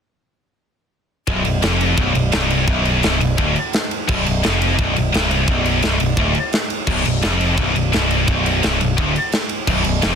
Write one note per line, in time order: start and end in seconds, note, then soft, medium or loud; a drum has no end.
1.27 1.44 B0 loud
1.27 1.43 B1 loud
1.27 kick loud
1.27 ride loud
1.45 1.62 B0 medium
1.45 1.59 B1 medium
1.45 ride medium
1.62 1.96 F1 loud
1.62 1.97 F2 loud
1.62 snare loud
1.62 ride loud
1.81 ride medium
1.97 2.14 B0 medium
1.97 2.14 B1 loud
1.97 kick loud
1.97 ride loud
2.15 2.31 B0 medium
2.15 2.29 B1 medium
2.15 ride medium
2.32 2.66 C1 loud
2.32 2.67 C2 loud
2.32 snare loud
2.32 ride loud
2.50 ride medium
2.67 3.01 B0 loud
2.67 3.02 B1 loud
2.67 kick loud
2.67 ride medium
2.85 ride medium
3.03 3.20 C1 loud
3.03 3.20 C2 loud
3.03 snare loud
3.03 ride loud
3.20 3.38 B0 medium
3.20 3.34 B1 medium
3.20 ride medium
3.38 3.54 D1 loud
3.38 3.55 D2 loud
3.38 kick loud
3.38 ride medium
3.56 ride medium
3.73 snare loud
3.73 ride medium
3.91 ride medium
4.08 4.25 B0 medium
4.08 4.25 B1 loud
4.08 kick loud
4.08 crash loud
4.26 4.44 B0 medium
4.26 4.40 B1 medium
4.26 ride medium
4.43 4.77 F1 medium
4.43 4.78 F2 loud
4.43 snare loud
4.43 ride loud
4.62 ride medium
4.78 4.95 B0 medium
4.78 4.95 B1 loud
4.78 kick loud
4.78 ride loud
4.96 5.13 B0 medium
4.96 5.10 B1 medium
4.96 ride medium
5.12 5.46 C1 loud
5.12 5.47 C2 loud
5.12 snare loud
5.12 ride loud
5.31 ride medium
5.48 5.81 B0 loud
5.48 5.82 B1 loud
5.48 kick loud
5.48 ride loud
5.66 ride medium
5.82 5.99 C1 loud
5.82 5.99 C2 loud
5.82 snare loud
5.82 ride loud
6.00 6.17 B0 medium
6.00 6.14 B1 medium
6.00 ride medium
6.17 6.34 D1 medium
6.17 6.35 D2 loud
6.17 kick loud
6.17 ride loud
6.35 ride medium
6.53 snare loud
6.53 ride medium
6.70 ride medium
6.87 7.04 B0 loud
6.87 7.04 B1 loud
6.87 kick loud
6.87 crash loud
7.05 7.22 B0 medium
7.05 7.19 B1 medium
7.05 ride medium
7.22 7.56 F1 loud
7.22 7.56 F2 loud
7.22 snare loud
7.22 ride medium
7.41 ride medium
7.57 7.74 B0 medium
7.57 7.73 B1 loud
7.57 kick loud
7.57 ride loud
7.74 7.92 B0 medium
7.74 7.89 B1 medium
7.74 ride medium
7.92 8.26 C1 loud
7.92 8.27 C2 loud
7.92 snare loud
7.92 ride loud
8.11 ride medium
8.27 8.61 B0 loud
8.27 8.62 B1 loud
8.27 kick loud
8.27 ride loud
8.46 ride medium
8.62 8.80 C1 medium
8.62 8.79 C2 loud
8.62 snare loud
8.62 ride loud
8.80 8.98 B0 medium
8.80 8.94 B1 medium
8.80 ride medium
8.97 9.14 D1 loud
8.97 9.14 D2 loud
8.97 kick loud
8.97 ride loud
9.16 ride medium
9.32 snare loud
9.32 ride loud
9.49 ride medium
9.67 9.84 B0 loud
9.67 9.83 B1 loud
9.67 kick loud
9.67 crash loud
9.84 10.02 B0 medium
9.84 9.99 B1 medium
9.84 ride medium
10.02 10.15 F1 loud
10.02 10.15 F2 loud
10.02 snare loud
10.02 ride loud